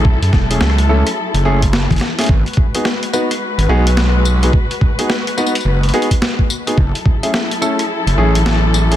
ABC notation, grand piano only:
X:1
M:4/4
L:1/16
Q:"Swing 16ths" 1/4=107
K:G#phr
V:1 name="Grand piano"
z3 [A,CEG] z2 [A,CEA] z3 [A,CEG] z4 [A,CEG] | z3 [B,DFG] z2 [B,DFB] z3 [B,DFG] z4 [B,DFG] | z3 [B,DFG] z2 [B,DFB] z3 [B,DFG] z4 [B,DFG] | z3 [A,CEG] z2 [A,CEA] z3 [A,CEG] z4 [A,CEG] |]